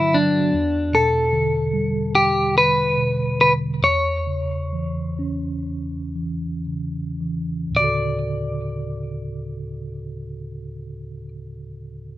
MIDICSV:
0, 0, Header, 1, 4, 480
1, 0, Start_track
1, 0, Key_signature, 2, "major"
1, 0, Tempo, 806452
1, 319, Time_signature, 4, 2, 24, 8
1, 1766, Tempo, 878477
1, 2726, Tempo, 946372
1, 3206, Tempo, 1006711
1, 3686, Tempo, 1083032
1, 4166, Tempo, 1125704
1, 6049, End_track
2, 0, Start_track
2, 0, Title_t, "Clean electric guitar"
2, 0, Program_c, 0, 27
2, 0, Note_on_c, 0, 64, 55
2, 86, Note_on_c, 0, 62, 63
2, 94, Note_off_c, 0, 64, 0
2, 563, Note_on_c, 0, 69, 61
2, 570, Note_off_c, 0, 62, 0
2, 1279, Note_off_c, 0, 69, 0
2, 1281, Note_on_c, 0, 67, 56
2, 1528, Note_off_c, 0, 67, 0
2, 1534, Note_on_c, 0, 71, 66
2, 2002, Note_off_c, 0, 71, 0
2, 2008, Note_on_c, 0, 71, 65
2, 2071, Note_off_c, 0, 71, 0
2, 2242, Note_on_c, 0, 73, 57
2, 3668, Note_off_c, 0, 73, 0
2, 4168, Note_on_c, 0, 74, 48
2, 5668, Note_off_c, 0, 74, 0
2, 6049, End_track
3, 0, Start_track
3, 0, Title_t, "Analog synth pad"
3, 0, Program_c, 1, 89
3, 0, Note_on_c, 1, 50, 70
3, 0, Note_on_c, 1, 54, 66
3, 0, Note_on_c, 1, 59, 70
3, 0, Note_on_c, 1, 66, 80
3, 296, Note_off_c, 1, 50, 0
3, 297, Note_off_c, 1, 54, 0
3, 297, Note_off_c, 1, 66, 0
3, 305, Note_off_c, 1, 59, 0
3, 6049, End_track
4, 0, Start_track
4, 0, Title_t, "Tine electric piano"
4, 0, Program_c, 2, 4
4, 0, Control_c, 2, 64, 127
4, 0, Note_on_c, 2, 43, 45
4, 0, Note_on_c, 2, 50, 40
4, 0, Note_on_c, 2, 54, 39
4, 0, Note_on_c, 2, 59, 41
4, 61, Note_off_c, 2, 59, 0
4, 77, Note_off_c, 2, 54, 0
4, 84, Note_on_c, 2, 54, 39
4, 295, Note_off_c, 2, 43, 0
4, 303, Note_off_c, 2, 50, 0
4, 312, Note_off_c, 2, 54, 0
4, 318, Note_on_c, 2, 40, 46
4, 326, Control_c, 2, 64, 0
4, 413, Control_c, 2, 64, 127
4, 552, Note_on_c, 2, 47, 36
4, 791, Note_on_c, 2, 50, 42
4, 1032, Note_on_c, 2, 55, 41
4, 1491, Note_off_c, 2, 47, 0
4, 1510, Note_off_c, 2, 50, 0
4, 1517, Note_on_c, 2, 50, 36
4, 1764, Note_on_c, 2, 47, 34
4, 1976, Note_off_c, 2, 55, 0
4, 1991, Note_off_c, 2, 50, 0
4, 1998, Note_on_c, 2, 50, 32
4, 2212, Note_off_c, 2, 40, 0
4, 2220, Note_off_c, 2, 47, 0
4, 2227, Note_off_c, 2, 50, 0
4, 2231, Note_on_c, 2, 40, 47
4, 2241, Control_c, 2, 64, 0
4, 2328, Control_c, 2, 64, 127
4, 2478, Note_on_c, 2, 49, 31
4, 2729, Note_on_c, 2, 52, 33
4, 2962, Note_on_c, 2, 61, 36
4, 3422, Note_off_c, 2, 49, 0
4, 3433, Note_off_c, 2, 52, 0
4, 3439, Note_on_c, 2, 52, 34
4, 3683, Note_on_c, 2, 49, 28
4, 3902, Note_off_c, 2, 61, 0
4, 3914, Note_off_c, 2, 52, 0
4, 3919, Note_on_c, 2, 52, 32
4, 4129, Note_on_c, 2, 38, 35
4, 4144, Note_on_c, 2, 45, 30
4, 4145, Note_off_c, 2, 40, 0
4, 4149, Note_off_c, 2, 49, 0
4, 4157, Note_off_c, 2, 52, 0
4, 4157, Note_on_c, 2, 50, 29
4, 4170, Control_c, 2, 64, 0
4, 4170, Note_on_c, 2, 49, 31
4, 4183, Note_on_c, 2, 66, 30
4, 4198, Note_on_c, 2, 69, 33
4, 4245, Control_c, 2, 64, 127
4, 5630, Note_off_c, 2, 38, 0
4, 5645, Note_off_c, 2, 45, 0
4, 5657, Note_off_c, 2, 50, 0
4, 5670, Note_off_c, 2, 49, 0
4, 5684, Note_off_c, 2, 66, 0
4, 5698, Note_off_c, 2, 69, 0
4, 6049, End_track
0, 0, End_of_file